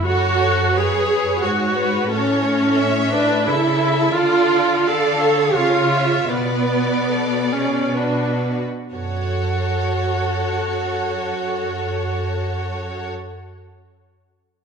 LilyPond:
<<
  \new Staff \with { instrumentName = "Violin section" } { \time 3/4 \key fis \minor \tempo 4 = 78 << { cis''4 b'8 b'8 cis''4 | cis''4 e''4 e''4 | d''4 f''4 f''8 e''8 | d''2 b'8 r8 |
cis''2.~ | cis''2. | } \\ { a'4 cis''4 cis''8 b'8 | a'8 a'8 cis''8 b'8 a'4 | a'4 d''8 cis''4. | b'4 a'8 gis'8 fis'8 r8 |
a'2.~ | a'2. | } >> }
  \new Staff \with { instrumentName = "Viola section" } { \time 3/4 \key fis \minor fis'4 gis'4 fis'4 | cis'4. d'8 e'4 | f'4 a'4 f'4 | b4. cis'8 d'8 r8 |
fis'2.~ | fis'2. | }
  \new Staff \with { instrumentName = "Harp" } { \time 3/4 \key fis \minor <fis cis' fis'>2.~ | <fis cis' fis'>2. | r2. | r2. |
r2. | r2. | }
  \new Staff \with { instrumentName = "Cello section" } { \clef bass \time 3/4 \key fis \minor fis,2 gis,4 | a,2 cis4 | d2 cis4 | b,2~ b,8 r8 |
fis,2.~ | fis,2. | }
>>